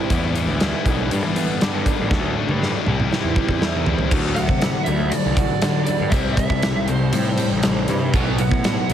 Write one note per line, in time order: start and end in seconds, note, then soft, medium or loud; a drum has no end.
0.00 0.11 C3 medium
0.00 0.11 E3 medium
0.00 0.11 G3 medium
0.00 0.10 C4 medium
0.00 0.11 C4 medium
0.00 0.10 E4 medium
0.00 0.11 E4 medium
0.10 0.46 E2 medium
0.10 1.11 E2 medium
0.10 0.34 E3 medium
0.10 0.34 G3 loud
0.10 0.35 B3 medium
0.10 0.36 E4 medium
0.10 kick medium
0.10 closed hi-hat medium
0.35 0.60 E3 medium
0.35 0.61 G3 medium
0.35 0.61 B3 medium
0.35 0.62 E4 medium
0.35 closed hi-hat medium
0.47 0.71 D2 medium
0.60 0.86 E3 medium
0.60 1.11 E3 medium
0.60 0.86 G3 medium
0.60 0.87 B3 medium
0.60 0.87 E4 loud
0.60 snare loud
0.60 closed hi-hat medium
0.85 1.09 B1 medium
0.85 1.10 E3 medium
0.85 1.10 G3 medium
0.85 1.10 B3 medium
0.85 1.10 D4 medium
0.85 1.11 E4 medium
0.85 kick medium
0.85 closed hi-hat medium
1.11 1.23 G2 loud
1.11 2.11 G2 medium
1.11 1.36 G2 medium
1.11 1.36 D3 medium
1.11 1.36 G3 loud
1.11 1.37 B3 medium
1.11 1.38 D4 medium
1.11 closed hi-hat medium
1.24 1.47 E3 medium
1.36 1.60 G2 medium
1.36 1.61 D3 medium
1.36 1.61 G3 medium
1.36 2.11 B3 medium
1.36 1.62 B3 medium
1.36 1.62 D4 medium
1.36 closed hi-hat medium
1.61 1.87 G2 medium
1.61 1.85 G2 medium
1.61 1.87 D3 medium
1.61 1.87 G3 medium
1.61 1.88 B3 medium
1.61 1.88 D4 loud
1.61 2.11 G4 medium
1.61 snare loud
1.61 closed hi-hat medium
1.86 2.10 G2 medium
1.86 2.10 D3 medium
1.86 2.11 G3 medium
1.86 2.11 B3 medium
1.86 2.11 D4 medium
1.86 kick medium
1.86 closed hi-hat medium
2.00 2.10 A1 medium
2.11 2.34 D2 medium
2.11 2.60 D3 medium
2.11 2.36 D3 medium
2.11 2.37 F#3 medium
2.11 2.37 A3 loud
2.11 2.38 D4 medium
2.11 kick loud
2.11 snare medium
2.38 2.62 D3 medium
2.38 2.62 F#3 medium
2.38 2.62 A3 medium
2.38 2.63 D4 medium
2.49 2.72 G2 medium
2.49 high tom medium
2.61 2.86 D3 medium
2.61 2.85 D3 medium
2.61 2.86 F#3 loud
2.61 2.86 A3 medium
2.61 2.86 D4 loud
2.61 snare medium
2.86 3.10 C2 medium
2.86 4.11 C3 medium
2.86 3.12 C3 medium
2.86 3.12 G3 medium
2.86 3.13 C4 medium
2.86 3.13 E4 loud
2.86 mid tom medium
3.00 mid tom medium
3.11 3.36 C3 medium
3.11 4.10 E3 medium
3.11 3.37 G3 medium
3.11 3.37 C4 medium
3.11 3.38 E4 medium
3.11 snare medium
3.24 3.35 E2 medium
3.36 3.61 C3 medium
3.36 4.11 G3 medium
3.36 3.62 G3 medium
3.36 3.62 C4 medium
3.36 3.63 E4 medium
3.36 kick medium
3.48 3.83 E2 medium
3.48 kick medium
3.60 3.86 C3 medium
3.60 3.87 G3 medium
3.60 3.88 C4 medium
3.60 4.11 E4 medium
3.60 3.88 E4 loud
3.60 snare medium
3.85 3.98 E2 medium
3.85 4.10 C3 medium
3.85 4.11 G3 medium
3.85 4.11 C4 medium
3.85 4.11 E4 medium
3.85 floor tom medium
3.99 floor tom medium
4.11 4.47 D2 medium
4.11 5.37 D3 medium
4.11 4.35 D3 medium
4.11 4.36 F#3 medium
4.11 4.36 A3 medium
4.11 kick loud
4.11 crash medium
4.35 4.60 D3 medium
4.35 4.60 F#3 medium
4.35 4.85 A3 medium
4.35 4.84 F#5 medium
4.35 closed hi-hat medium
4.49 4.72 C3 medium
4.49 kick medium
4.61 4.85 D3 medium
4.61 4.85 F#3 medium
4.61 5.36 F#4 medium
4.61 snare loud
4.61 closed hi-hat medium
4.84 5.11 D2 medium
4.84 5.10 D3 medium
4.84 5.10 F#3 medium
4.84 6.12 A3 medium
4.84 5.11 E5 medium
4.84 closed hi-hat medium
5.10 5.35 D3 medium
5.10 5.35 F#3 medium
5.10 5.62 D4 medium
5.10 5.34 D5 medium
5.10 closed hi-hat medium
5.26 5.49 C2 medium
5.35 5.60 D3 medium
5.35 5.60 F#3 medium
5.35 6.13 F#4 medium
5.35 5.83 D5 medium
5.35 kick medium
5.35 closed hi-hat medium
5.62 5.85 D3 medium
5.62 5.86 D3 medium
5.62 5.85 F#3 medium
5.62 snare loud
5.62 closed hi-hat medium
5.84 6.10 D3 medium
5.84 6.13 D3 medium
5.84 6.12 D5 medium
5.84 closed hi-hat medium
5.88 6.11 F#3 medium
6.01 6.12 G2 medium
6.10 6.36 C2 medium
6.10 6.36 C3 medium
6.10 7.39 C3 medium
6.10 6.37 G3 medium
6.10 6.37 C4 medium
6.10 6.33 E5 medium
6.10 kick loud
6.10 closed hi-hat medium
6.34 6.73 C2 medium
6.34 6.60 C3 medium
6.34 6.88 E5 medium
6.34 kick medium
6.34 closed hi-hat medium
6.38 6.61 G3 medium
6.38 6.88 G3 medium
6.50 kick medium
6.63 6.86 C3 medium
6.63 6.86 G3 medium
6.63 7.39 G4 medium
6.63 snare loud
6.63 closed hi-hat medium
6.76 7.11 C2 medium
6.86 7.11 C3 medium
6.86 7.11 G3 medium
6.86 8.15 G3 medium
6.86 7.84 C5 medium
6.86 closed hi-hat medium
7.13 7.48 A2 loud
7.13 7.36 C3 medium
7.13 7.36 G3 medium
7.13 7.64 C4 medium
7.13 closed hi-hat medium
7.38 7.61 C3 medium
7.38 7.61 G3 medium
7.38 8.15 G4 medium
7.38 closed hi-hat medium
7.51 7.86 A1 medium
7.63 7.87 C3 medium
7.63 7.87 G3 medium
7.63 8.15 C4 medium
7.63 snare loud
7.63 closed hi-hat medium
7.88 8.12 G2 medium
7.88 8.12 C3 medium
7.88 8.14 E3 medium
7.88 8.12 G3 medium
7.88 snare soft
7.88 closed hi-hat medium
8.14 8.49 B1 medium
8.14 8.38 B2 medium
8.14 8.93 B2 medium
8.14 8.38 F#3 medium
8.14 8.38 B3 loud
8.14 kick loud
8.14 closed hi-hat medium
8.38 8.62 B2 medium
8.38 8.62 F#3 medium
8.38 8.90 B3 medium
8.38 8.87 F#5 medium
8.38 closed hi-hat medium
8.51 8.75 A2 medium
8.51 kick medium
8.64 8.87 B2 medium
8.64 8.88 F#3 medium
8.64 8.93 F#4 medium
8.64 snare loud
8.64 closed hi-hat medium
8.90 8.93 B1 loud
8.90 8.93 B2 medium
8.90 closed hi-hat medium